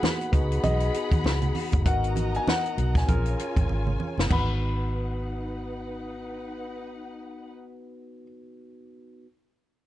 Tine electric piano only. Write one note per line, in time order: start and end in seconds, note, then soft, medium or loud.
0.00 0.37 A#3 medium
0.00 0.31 B3 medium
0.00 0.31 D#4 medium
0.00 0.32 F#4 medium
0.32 1.31 B3 medium
0.32 1.32 D#4 medium
0.32 1.32 F#4 medium
0.32 1.32 G#4 medium
1.85 2.83 B3 medium
1.85 2.83 D#4 medium
1.85 2.84 F#4 medium
1.85 2.84 A#4 medium
3.06 3.15 C4 medium
3.06 4.06 F4 medium
3.06 4.06 G#4 medium
3.06 4.06 A#4 medium
3.13 4.08 C#4 medium
4.26 8.19 B3 medium
4.26 8.20 D#4 medium
4.32 8.22 F#4 medium
4.32 8.24 B4 medium